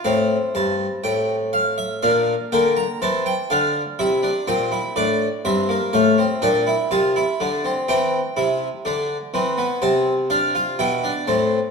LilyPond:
<<
  \new Staff \with { instrumentName = "Harpsichord" } { \time 4/4 \key f \major \tempo 4 = 62 << { f''8 a''8 g''8 f''16 e''16 f''8 g''16 bes''16 a''16 g''16 f''8 | e''8 g''8 d''8 e''8 f''8 g''8 a''4 | g''2 a''8 f''8 g''8 a''8 | } \\ { c'2 d'8 bes8 c'8 d'8 | e'16 d'16 c'16 e'16 d'8 c'16 bes16 a16 c'16 d'16 e'16 f'16 e'16 d'16 c'16 | c'8 e'8 d'8 c'16 b16 c'8 d'16 f'16 e'16 d'16 c'8 | } >> }
  \new Staff \with { instrumentName = "Harpsichord" } { \clef bass \time 4/4 \key f \major a,8 g,8 a,4 bes,8 d8 e8 d8 | c8 bes,8 a,8 g,8 a,8 bes,8 c8 d8 | e8 c8 d8 e8 c4 b,8 a,8 | }
>>